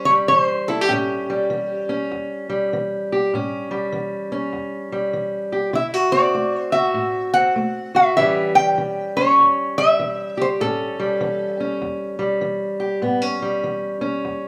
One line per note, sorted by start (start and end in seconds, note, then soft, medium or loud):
0.00 0.26 E2 medium
0.00 0.90 C#4 soft
0.05 0.12 C#5 medium
0.10 1.29 G3 medium
0.28 0.87 E3 medium
0.28 0.39 C#5 loud
0.39 0.69 C5 loud
0.68 0.81 E4 medium
0.68 0.91 A4 medium
0.81 0.92 G4 medium
0.89 1.47 A2 medium
0.89 1.89 C#4 medium
0.89 2.07 G4 medium
1.30 2.48 G3 medium
1.50 2.07 E3 medium
1.89 3.30 C#4 medium
2.11 2.68 E2 medium
2.49 3.70 G3 medium
2.73 3.29 E3 medium
3.12 3.31 G4 medium
3.34 3.90 A2 medium
3.34 4.31 C#4 medium
3.71 4.91 G3 medium
3.92 4.49 E3 medium
4.32 5.73 C#4 medium
4.53 5.10 E2 medium
4.92 5.76 G3 medium
5.13 5.70 E3 medium
5.52 5.73 G4 medium
5.73 6.31 D3 medium
5.73 5.94 E4 medium
5.73 5.86 E5 medium
5.94 6.73 F#4 medium
6.12 7.33 C4 medium
6.12 6.61 D5 loud
6.34 6.92 A3 medium
6.61 6.75 C5 loud
6.72 7.93 F#4 medium
6.72 7.33 E5 medium
6.94 7.52 A2 medium
7.34 8.15 C4 medium
7.34 7.97 F#5 loud
7.56 8.13 A3 medium
7.95 8.15 F#4 medium
7.95 8.16 E5 medium
8.16 8.73 A2 medium
8.16 8.77 E3 medium
8.16 8.55 G3 medium
8.16 9.17 C#4 medium
8.16 10.37 G4 medium
8.16 8.57 E5 loud
8.55 9.78 G3 medium
8.55 9.18 G5 loud
8.78 9.34 E3 medium
9.17 10.61 C#4 medium
9.17 9.79 C#5 loud
9.39 9.95 E2 medium
9.78 10.99 G3 medium
9.78 10.40 E5 loud
9.99 10.56 E3 medium
10.37 10.63 G4 medium
10.41 10.47 C5 medium
10.60 11.16 A2 medium
10.60 11.60 C#4 medium
10.60 11.78 A4 medium
11.00 12.18 G3 medium
11.21 11.77 E3 medium
11.60 13.00 C#4 medium
11.81 12.38 E2 medium
12.19 13.40 G3 medium
12.41 12.98 E3 medium
12.80 13.00 G4 medium
13.02 13.58 A2 medium
13.02 13.22 B3 medium
13.22 14.00 C#4 medium
13.42 14.48 G3 medium
13.64 14.19 E3 medium
14.01 14.48 C#4 medium
14.25 14.48 E2 medium